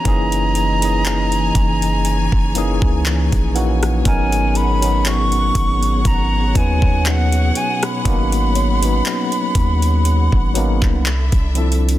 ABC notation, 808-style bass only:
X:1
M:4/4
L:1/16
Q:"Swing 16ths" 1/4=60
K:G#m
V:1 name="808-style bass" clef=bass
F,,,6 F,,,3 F,,,2 C,,2 A,,,3 | G,,,6 G,,,2 G,,,2 D,,4 z2 | G,,,4 z2 D,,3 G,,,2 ^B,,,2 =C,,3 |]